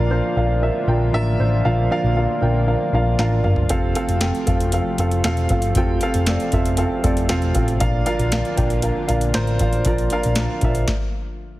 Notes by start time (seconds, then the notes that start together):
Already playing: A#2 D3 F3 A#3 D4 F4 A#4 F5
0.00 A#1
0.10 D4 F4 A#4 C5
0.36 A#1 D4 F4 A#4 F5
0.62 D4 F4 A#4 E5
0.87 A#1 D4 F4 A#4 G5
1.13 A1 D4 F4 A#4 E5
1.39 A1 D4 F4 A#4 C5
1.65 A#1 A#2 F3 D4 F4 A#4 F5
1.91 D4 F4 A#4 F5
2.04 A#1
2.16 D4 F4 A#4 F5
2.41 A#1 D4 F4 A#4 G5
2.67 D4 F4 A#4 F5
2.93 A#1 D4 F4 A#4 F5
3.19 A1 D4 F4 A#4 F5, snare
3.43 G1 D4 F4 A#4 F5, mid tom
3.56 floor tom
3.69 F1 C3 A3 C4 F4 A4 F5, kick, closed hi-hat
3.95 C4 F4 A4 F5, closed hi-hat
4.08 F1, closed hi-hat
4.21 C4 F4 A4 G5, snare, closed hi-hat
4.35 closed hi-hat
4.47 F1 C4 F4 A4 F5, kick, closed hi-hat
4.60 closed hi-hat
4.72 C4 F4 A4 F5, closed hi-hat
4.98 F1 C4 F4 A4 F5, closed hi-hat
5.11 closed hi-hat
5.24 E1 C4 F4 A4 F5, snare, closed hi-hat
5.37 closed hi-hat
5.49 G1 C4 F4 A4 F5, kick, closed hi-hat
5.62 closed hi-hat
5.75 F1 C3 C4 F4 A4 G5, kick, closed hi-hat
6.01 C4 F4 A4 F5, closed hi-hat
6.14 F1, closed hi-hat
6.26 C4 F4 A4 D5, snare, closed hi-hat
6.40 closed hi-hat
6.52 F1 C4 F4 A4 E5, kick, closed hi-hat
6.66 closed hi-hat
6.77 C4 F4 A4 F5, closed hi-hat
7.04 F1 C4 F4 A4 D5, kick, closed hi-hat
7.17 closed hi-hat
7.29 E1 C4 F4 A4 F5, snare, closed hi-hat
7.42 closed hi-hat
7.54 A1 C4 F4 A4 F5, kick, closed hi-hat
7.68 closed hi-hat
7.80 A#1 A#2 D3 F3 A#3 D4 F4 A#4 F5, kick, closed hi-hat
8.06 D4 F4 A#4 F5, closed hi-hat
8.19 A#1, closed hi-hat
8.32 D4 F4 A#4 F5, snare, closed hi-hat
8.45 closed hi-hat
8.57 A#1 D4 F4 A#4 G5, kick, closed hi-hat
8.70 closed hi-hat
8.82 D4 F4 A#4 F5, closed hi-hat
9.07 A#1 D4 F4 A#4 F5, closed hi-hat
9.21 closed hi-hat
9.34 A1 D4 F4 A#4 C5, snare, closed hi-hat
9.47 closed hi-hat
9.59 A1 D4 F4 A#4 F5, kick, closed hi-hat
9.73 closed hi-hat
9.85 A#1 A#2 F3 D4 F4 A#4 D5, kick, closed hi-hat
9.98 closed hi-hat
10.10 D4 F4 A#4 F5, closed hi-hat
10.23 A#1, closed hi-hat
10.35 D4 F4 A#4 D5, snare, closed hi-hat
10.61 A#1 D4 F4 A#4 E5, kick, closed hi-hat
10.75 closed hi-hat
10.88 kick, snare